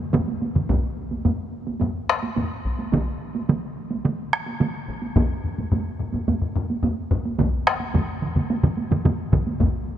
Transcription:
0.13 taiko low-mid, taiko mid, taiko high
0.28 taiko high
0.42 taiko high
0.55 taiko low-mid, taiko mid, taiko high
0.69 taiko, taiko low-mid, taiko high
1.11 taiko high
1.25 taiko low-mid, taiko high
1.67 taiko high
1.81 taiko low-mid, taiko high
2.09 taiko rim
2.23 taiko high
2.36 taiko low-mid, taiko high
2.65 taiko
2.79 taiko high
2.92 taiko, taiko mid, taiko high
3.35 taiko high
3.49 taiko mid, taiko high
3.91 taiko high
4.05 taiko mid, taiko high
4.33 taiko rim
4.46 taiko high
4.60 taiko mid, taiko high
4.88 taiko
5.02 taiko high
5.16 taiko, taiko low-mid, taiko high
5.44 taiko low-mid
5.58 taiko low-mid, taiko high
5.72 taiko low-mid, taiko high
5.99 taiko low-mid
6.14 taiko low-mid, taiko high
6.28 taiko low-mid, taiko high
6.42 taiko low-mid
6.56 taiko low-mid
6.70 taiko high
6.83 taiko low-mid, taiko high
7.11 taiko, taiko low-mid
7.25 taiko high
7.38 taiko, taiko low-mid, taiko mid, taiko high
7.67 taiko rim
7.80 taiko high
7.94 taiko low-mid, taiko mid, taiko high
8.22 taiko low-mid, taiko mid
8.36 taiko low-mid, taiko mid, taiko high
8.50 taiko high
8.63 taiko low-mid, taiko mid
8.78 taiko high
8.91 taiko low-mid, taiko mid, taiko high
9.05 taiko low-mid, taiko mid, taiko high
9.32 taiko, taiko low-mid, taiko mid
9.47 taiko high
9.60 taiko, taiko low-mid, taiko high

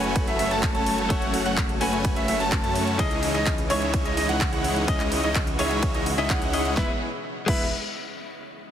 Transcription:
Already playing: F#1 C#3 F#3 A3 C#4 F#4 A4 B4 C#5 G#5
0.04 closed hi-hat
0.16 kick, closed hi-hat, ride
0.27 F#1 A3 C#4 F#4 C#5 E5, closed hi-hat
0.39 F#1 A3 C#4 F#4 C#5 E5, open hi-hat
0.51 F#1 A3 C#4 F#4 C#5 A5, closed hi-hat
0.63 kick, clap, closed hi-hat, ride
0.75 F#1 A3 C#4 F#4 C#5 A5, closed hi-hat
0.86 open hi-hat
0.98 closed hi-hat
1.09 F#1 A3 C#4 F#4 C#5 F#5, kick, closed hi-hat, ride
1.22 closed hi-hat
1.34 open hi-hat
1.46 F#1 A3 C#4 F#4 C#5 F#5, closed hi-hat
1.57 kick, clap, closed hi-hat, ride
1.69 closed hi-hat
1.80 F#1 A3 C#4 F#4 B4 C#5 G#5, open hi-hat
1.93 closed hi-hat
2.05 kick, closed hi-hat, ride
2.16 F#1 A3 C#4 F#4 C#5 E5, closed hi-hat
2.28 F#1 A3 C#4 F#4 C#5 E5, open hi-hat
2.40 F#1 A3 C#4 F#4 C#5 A5, closed hi-hat
2.52 kick, clap, closed hi-hat, ride
2.64 F#2 A3 C#4 F#4 C#5 A5, closed hi-hat
2.75 open hi-hat
2.87 closed hi-hat
2.98 C#2 C#3 E3 G#3 C#4 D#4 E4 G#4 C#5 D#5, kick, closed hi-hat, ride
3.11 closed hi-hat
3.23 open hi-hat
3.35 C#2 G#3 D#4 E4 C#5 D#5
3.46 kick, clap, closed hi-hat, ride
3.58 closed hi-hat
3.69 C#2 C#3 E3 G#3 C#4 D#4 E4 G#4 C#5 E5, open hi-hat
3.82 closed hi-hat
3.94 kick, closed hi-hat, ride
4.05 C#2 G#3 D#4 E4 C#5 D#5, closed hi-hat
4.17 C#2 G#3 D#4 E4 C#5 D#5, open hi-hat
4.29 C#2 G#3 D#4 E4 C#5 F#5, closed hi-hat
4.41 kick, clap, closed hi-hat, ride
4.53 C#2 G#3 D#4 E4 C#5 F#5, closed hi-hat
4.64 open hi-hat
4.76 closed hi-hat
4.87 C#2 C#3 E3 G#3 C#4 D#4 E4 F#4 G#4 C#5 D#5, kick, closed hi-hat, ride
5.00 clap, closed hi-hat
5.12 open hi-hat
5.24 C#2 G#3 D#4 E4 C#5 D#5, closed hi-hat
5.35 kick, clap, closed hi-hat, ride
5.47 closed hi-hat
5.58 C#2 C#3 E3 G#3 C#4 D#4 E4 G#4 C#5 E5, open hi-hat
5.71 closed hi-hat
5.83 kick, closed hi-hat, ride
5.94 C#2 G#3 D#4 E4 C#5 D#5, closed hi-hat
6.06 open hi-hat
6.17 C#2 C#3 G#3 C#4 D#4 E4 G#4 C#5 D#5 E5, closed hi-hat
6.30 C#2 G#3 D#4 E4 C#5 F#5, kick, clap, closed hi-hat, ride
6.42 closed hi-hat
6.53 C#4 E4 G#4 D#5, open hi-hat
6.65 closed hi-hat
6.75 E1 B2 E3 G#3 B3 E4 G#4 B4 E5, kick, snare
7.46 E1 G#3 B3 E4 B4 E5, kick, crash

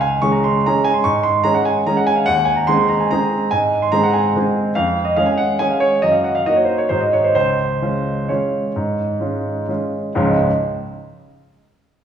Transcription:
Already playing: C#2 F5
0.01 G#5
0.22 G#3 C#4 G#4 C#6
0.32 A#5
0.44 C6
0.66 G#3 C#4 G#4 A#5
0.84 G#5
0.94 C6
1.04 G#2 C#6
1.23 C6
1.44 G#3 C#4 G#4 A#5
1.54 F#5
1.65 G#5
1.86 G#3 C#4 G#4 A#5
1.97 F#5
2.07 G#5
2.16 F5
2.26 D#2 F#5
2.45 G#5
2.56 A#5
2.67 G#3 C4 G#4 C6
2.89 A#5
3.00 G#5
3.11 G#3 C4 G#4 A#5
3.51 G#2 G#5
3.82 C6
3.92 G#3 C4 G#4 A#5
4.03 F#5
4.14 G#5
4.36 G#3 C4 G#4
4.75 F2 F5
5.05 D#5
5.16 G#3 C#4 G#4 F5
5.26 G#5
5.38 F#5
5.59 G#3 C#4 G#4 G#5
5.70 F5
5.80 C#5
6.02 F#2 D#5
6.12 F5
6.24 F#5
6.35 F5
6.46 A#3 D#4 F#4 D#5
6.56 C#5
6.65 C5
6.78 C#5
6.89 G#2 G#3 D#4 F#4 C5
7.01 D#5
7.13 C#5
7.24 C5
7.35 C#2 C5
7.82 G#3 C#4 F4
8.29 G#3 C#4 F4 C#5
8.76 G#2
9.20 G#3 C#4 F4
9.69 G#3 C#4 F4
10.15 C#2 G#2 F3 G#3 C#4 F4

